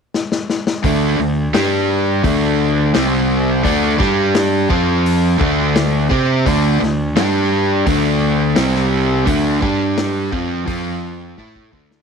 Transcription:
0.14 snare medium
0.32 snare medium
0.50 snare medium
0.67 snare loud
0.83 1.17 D2 medium
0.83 1.18 D3 medium
0.83 1.18 A3 medium
0.83 1.18 D4 loud
0.83 kick loud
0.83 open hi-hat medium
1.19 1.52 D2 medium
1.19 1.47 D3 medium
1.19 1.48 A3 medium
1.54 2.21 G2 medium
1.54 2.23 G3 medium
1.54 2.24 D4 medium
1.54 2.24 G4 medium
1.54 snare loud
1.54 open hi-hat medium
2.23 2.91 D2 medium
2.23 2.93 D3 medium
2.23 2.93 A3 loud
2.23 2.94 D4 medium
2.23 kick loud
2.23 open hi-hat medium
2.94 3.61 C2 loud
2.94 3.63 C3 loud
2.94 3.64 G3 loud
2.94 3.64 C4 loud
2.94 snare loud
2.94 open hi-hat medium
3.63 3.98 D2 medium
3.63 3.98 D3 medium
3.63 3.97 A3 medium
3.63 3.97 D4 loud
3.63 kick loud
3.63 open hi-hat medium
3.98 4.66 G2 loud
3.98 4.68 G3 medium
3.98 4.69 D4 medium
3.98 4.69 G4 loud
3.98 kick loud
3.98 snare soft
4.35 snare loud
4.35 open hi-hat medium
4.69 5.37 F2 medium
4.69 5.38 F3 medium
4.69 5.38 C4 loud
4.69 5.39 F4 loud
4.69 kick loud
5.06 open hi-hat medium
5.38 6.07 D2 medium
5.38 6.09 D3 medium
5.38 6.09 A3 loud
5.38 6.09 D4 medium
5.38 kick loud
5.76 snare loud
5.76 open hi-hat medium
6.09 6.44 C3 medium
6.09 6.44 C4 loud
6.09 6.45 G4 loud
6.09 6.45 C5 loud
6.09 kick loud
6.46 6.79 D2 medium
6.46 6.79 D3 medium
6.46 6.80 A3 loud
6.46 6.81 D4 loud
6.46 kick loud
6.46 open hi-hat medium
6.80 7.14 D2 medium
6.80 7.09 D3 medium
6.80 7.09 A3 medium
6.80 snare soft
7.16 7.83 G2 medium
7.16 7.86 G3 medium
7.16 7.85 D4 loud
7.16 7.86 G4 loud
7.16 snare loud
7.16 open hi-hat medium
7.86 8.53 D2 loud
7.86 8.55 D3 medium
7.86 8.56 A3 medium
7.86 8.56 D4 loud
7.86 kick loud
7.86 open hi-hat medium
8.56 9.23 C2 loud
8.56 9.25 C3 loud
8.56 9.26 G3 loud
8.56 9.26 C4 loud
8.56 snare loud
8.56 open hi-hat medium
8.75 snare soft
9.26 9.60 D2 medium
9.26 9.61 D3 loud
9.26 9.61 A3 loud
9.26 9.61 D4 loud
9.26 kick loud
9.26 open hi-hat medium
9.61 10.28 G2 loud
9.61 10.31 G3 loud
9.61 10.31 D4 medium
9.61 10.31 G4 medium
9.61 kick loud
9.97 snare loud
9.97 open hi-hat medium
10.32 10.65 F2 medium
10.32 10.65 F3 medium
10.32 10.66 C4 loud
10.32 10.66 F4 medium
10.32 kick loud
10.66 11.34 F2 medium
10.66 11.36 F3 medium
10.66 11.36 C4 medium
10.66 11.36 F4 loud
10.66 kick loud
10.66 open hi-hat medium
11.38 11.70 A2 medium
11.38 11.72 A3 medium
11.38 11.72 E4 medium
11.38 11.72 A4 loud
11.38 kick medium
11.56 kick medium
11.72 12.02 D2 medium
11.72 12.02 D3 medium
11.72 12.02 A3 loud
11.72 12.02 D4 medium
11.72 kick medium
11.91 snare medium

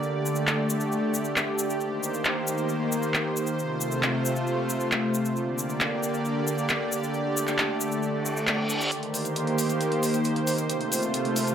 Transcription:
0.00 1.77 D3 medium
0.00 1.79 A3 medium
0.00 3.55 G4 medium
0.00 1.77 D5 medium
0.00 cabasa soft
0.26 cabasa medium
0.35 cabasa medium
0.47 clap loud
0.47 cabasa soft
0.70 cabasa medium
0.80 cabasa medium
0.92 cabasa soft
1.14 cabasa loud
1.25 cabasa medium
1.36 clap loud
1.36 cabasa soft
1.58 cabasa loud
1.70 cabasa soft
1.80 3.57 D#3 medium
1.80 3.57 A#3 medium
1.80 5.33 C5 medium
1.80 cabasa soft
2.03 cabasa medium
2.14 cabasa medium
2.24 clap loud
2.24 cabasa soft
2.47 cabasa loud
2.58 cabasa soft
2.69 cabasa soft
2.92 cabasa medium
3.03 cabasa soft
3.14 clap loud
3.14 cabasa soft
3.36 cabasa medium
3.47 cabasa soft
3.58 5.34 C3 medium
3.58 5.34 A3 medium
3.58 5.34 F4 medium
3.58 cabasa soft
3.81 cabasa medium
3.92 cabasa soft
4.03 clap loud
4.03 cabasa soft
4.25 cabasa medium
4.36 cabasa soft
4.47 cabasa soft
4.69 cabasa medium
4.80 cabasa soft
4.92 clap loud
4.92 cabasa soft
5.14 cabasa medium
5.25 cabasa soft
5.36 8.88 D3 medium
5.36 7.12 A#3 medium
5.36 8.88 G4 medium
5.36 8.88 D5 medium
5.36 cabasa soft
5.58 cabasa medium
5.70 cabasa soft
5.80 clap loud
5.80 cabasa soft
6.03 cabasa medium
6.14 cabasa soft
6.25 cabasa soft
6.47 cabasa medium
6.58 cabasa medium
6.69 clap loud
6.69 cabasa soft
6.92 cabasa medium
7.03 cabasa medium
7.14 8.90 A3 medium
7.14 cabasa soft
7.37 cabasa medium
7.47 clap soft
7.47 cabasa medium
7.58 clap loud
7.58 cabasa soft
7.80 cabasa medium
7.92 cabasa soft
8.03 reverse cymbal medium
8.03 cabasa soft
8.26 cabasa medium
8.37 cabasa soft
8.47 clap loud
8.47 cabasa soft
8.69 cabasa medium
8.81 cabasa medium
8.92 10.68 D#3 medium
8.92 10.68 A#3 medium
8.92 10.68 G4 medium
8.92 11.55 C5 medium
8.92 closed hi-hat medium
8.92 riser medium
8.92 cabasa soft
9.03 closed hi-hat soft
9.14 open hi-hat loud
9.14 cabasa medium
9.25 closed hi-hat soft
9.25 cabasa medium
9.36 closed hi-hat medium
9.36 cabasa soft
9.47 closed hi-hat soft
9.58 open hi-hat medium
9.58 cabasa medium
9.70 closed hi-hat soft
9.70 cabasa soft
9.81 closed hi-hat medium
9.81 cabasa soft
9.92 closed hi-hat soft
10.03 open hi-hat loud
10.03 cabasa medium
10.14 closed hi-hat soft
10.14 cabasa soft
10.24 closed hi-hat medium
10.24 cabasa soft
10.36 closed hi-hat soft
10.47 open hi-hat medium
10.47 cabasa medium
10.58 closed hi-hat soft
10.58 cabasa soft
10.70 11.55 C3 medium
10.70 11.55 A3 medium
10.70 11.55 F4 medium
10.70 closed hi-hat medium
10.70 cabasa soft
10.81 closed hi-hat soft
10.92 open hi-hat loud
10.92 cabasa loud
11.03 closed hi-hat soft
11.03 cabasa medium
11.14 closed hi-hat medium
11.14 cabasa soft
11.25 closed hi-hat soft
11.36 open hi-hat loud
11.36 cabasa medium
11.47 closed hi-hat soft
11.47 cabasa medium

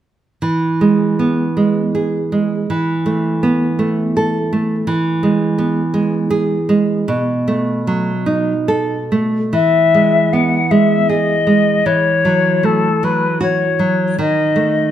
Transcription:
0.42 2.65 E3 soft
0.81 1.43 G#3 soft
1.19 1.80 B3 soft
1.57 2.17 G#3 soft
1.95 2.54 G#4 soft
2.32 2.69 G#3 soft
2.70 4.85 E3 soft
3.06 3.65 A3 soft
3.43 4.02 B3 soft
3.79 4.38 A3 soft
4.17 4.75 A4 soft
4.53 4.89 A3 soft
4.87 7.04 E3 soft
5.23 5.80 G#3 soft
5.58 6.17 B3 soft
5.94 6.54 G#3 soft
6.30 6.93 G#4 soft
6.69 7.09 G#3 soft
7.08 9.50 B2 soft
7.48 8.11 A3 soft
7.87 8.52 F#3 soft
8.26 8.94 D#4 soft
8.68 9.38 A4 soft
9.12 9.54 A3 soft
9.53 11.82 E3 soft
9.53 10.34 E5 medium
9.94 10.57 G#3 soft
10.33 10.95 B3 soft
10.33 10.72 F#5 soft
10.71 11.33 G#3 soft
10.71 11.11 E5 soft
11.09 11.71 G#4 soft
11.09 11.88 D#5 soft
11.47 11.86 G#3 soft
11.86 14.14 E3 soft
11.86 12.66 C#5 medium
12.25 12.88 F#3 soft
12.63 13.26 A3 soft
12.63 13.06 A4 soft
13.03 13.65 F#3 soft
13.03 13.41 B4 soft
13.41 14.03 F#4 soft
13.41 14.18 C#5 soft
13.79 14.18 F#3 soft
14.19 14.91 D#3 soft
14.19 14.91 D#5 medium
14.56 14.91 A3 soft

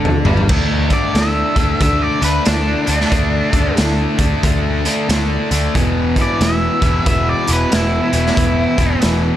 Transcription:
0.00 0.21 D2 medium
0.00 0.24 D3 medium
0.00 0.25 D4 medium
0.05 floor tom medium
0.25 0.48 G1 medium
0.25 0.49 G2 medium
0.25 0.49 G3 medium
0.25 floor tom medium
0.37 floor tom medium
0.49 0.92 D2 medium
0.49 0.89 D3 medium
0.49 0.90 A3 medium
0.49 0.90 D4 medium
0.49 kick loud
0.49 crash medium
0.89 1.14 D3 medium
0.89 1.15 A3 medium
0.89 1.15 D4 medium
0.89 kick medium
0.89 closed hi-hat medium
0.93 1.15 D5 medium
1.14 1.42 D2 medium
1.14 1.55 D3 medium
1.14 1.56 A3 medium
1.14 1.56 D4 medium
1.14 1.80 E5 medium
1.14 snare loud
1.14 closed hi-hat medium
1.56 1.72 D2 medium
1.56 1.79 D3 medium
1.56 1.80 A3 medium
1.56 1.81 D4 medium
1.56 kick medium
1.56 closed hi-hat medium
1.81 2.08 D2 medium
1.81 2.19 D3 medium
1.81 2.20 A3 medium
1.81 2.21 D4 medium
1.81 2.03 E5 medium
1.81 kick loud
1.81 closed hi-hat medium
2.02 2.24 D5 medium
2.21 2.38 D2 medium
2.21 2.44 D3 medium
2.21 2.45 A3 medium
2.21 2.46 D4 medium
2.21 2.46 B4 medium
2.21 closed hi-hat medium
2.45 2.74 D2 medium
2.45 2.84 D3 medium
2.45 2.85 A3 medium
2.45 3.74 D4 medium
2.45 2.86 D4 medium
2.45 snare loud
2.45 closed hi-hat medium
2.86 3.04 D2 medium
2.86 3.09 D3 medium
2.86 3.09 A3 medium
2.86 3.10 D4 medium
2.86 closed hi-hat medium
3.01 snare soft
3.10 3.39 D2 medium
3.10 3.51 D3 medium
3.10 3.51 A3 medium
3.10 3.52 D4 medium
3.10 kick loud
3.10 closed hi-hat medium
3.52 3.69 D2 medium
3.52 3.76 D3 medium
3.52 3.77 A3 medium
3.52 3.78 D4 medium
3.52 kick medium
3.52 closed hi-hat medium
3.77 4.05 D2 medium
3.77 4.17 D3 medium
3.77 4.18 A3 medium
3.77 4.19 D4 medium
3.77 snare loud
3.77 closed hi-hat medium
4.19 4.35 D2 medium
4.19 4.42 D3 medium
4.19 4.43 A3 medium
4.19 4.43 D4 medium
4.19 kick medium
4.19 closed hi-hat medium
4.43 4.86 D2 medium
4.43 4.84 D3 medium
4.43 4.85 A3 medium
4.43 4.86 D4 medium
4.43 kick loud
4.43 closed hi-hat medium
4.85 5.08 D3 medium
4.85 5.09 A3 medium
4.85 5.09 D4 medium
4.85 closed hi-hat medium
5.09 5.36 D2 medium
5.09 5.50 D3 medium
5.09 5.50 A3 medium
5.09 5.50 D4 medium
5.09 snare loud
5.09 closed hi-hat medium
5.51 5.67 D2 medium
5.51 5.74 D3 medium
5.51 5.74 A3 medium
5.51 5.74 D4 medium
5.51 closed hi-hat medium
5.75 6.18 E1 medium
5.75 6.17 E2 medium
5.75 6.17 B2 medium
5.75 6.18 E3 loud
5.75 kick loud
5.75 closed hi-hat medium
6.16 6.40 E2 medium
6.16 6.40 B2 medium
6.16 6.42 E3 medium
6.16 kick medium
6.16 closed hi-hat medium
6.22 6.41 D5 medium
6.40 6.67 E1 medium
6.40 6.80 E2 medium
6.40 6.80 B2 medium
6.40 6.81 E3 medium
6.40 7.06 E5 medium
6.40 snare loud
6.40 closed hi-hat medium
6.80 6.98 E1 medium
6.80 7.04 E2 medium
6.80 7.05 B2 medium
6.80 7.06 E3 medium
6.80 kick medium
6.80 closed hi-hat medium
7.06 7.33 E1 medium
7.06 7.46 E2 medium
7.06 7.47 B2 medium
7.06 7.47 E3 medium
7.06 7.28 E5 medium
7.06 kick loud
7.06 closed hi-hat medium
7.29 7.50 D5 medium
7.47 7.64 E1 medium
7.47 7.70 E2 medium
7.47 7.71 B2 medium
7.47 7.72 E3 medium
7.47 closed hi-hat medium
7.53 7.72 B4 medium
7.71 7.99 E1 medium
7.71 8.10 E2 medium
7.71 8.12 B2 medium
7.71 8.12 E3 medium
7.71 9.00 E4 loud
7.71 snare loud
7.71 closed hi-hat medium
8.12 8.29 E1 medium
8.12 8.35 E2 medium
8.12 8.35 B2 medium
8.12 8.36 E3 medium
8.12 closed hi-hat medium
8.27 snare soft
8.36 8.64 E1 medium
8.36 8.77 E2 medium
8.36 8.77 B2 medium
8.36 8.77 E3 medium
8.36 kick loud
8.36 closed hi-hat medium
8.78 8.94 E1 medium
8.78 9.01 E2 medium
8.78 9.01 B2 medium
8.78 9.03 E3 medium
8.78 kick medium
8.78 closed hi-hat medium
9.02 9.30 E1 medium
9.02 9.37 E2 medium
9.02 9.37 B2 medium
9.02 9.37 E3 medium
9.02 snare loud
9.02 closed hi-hat medium

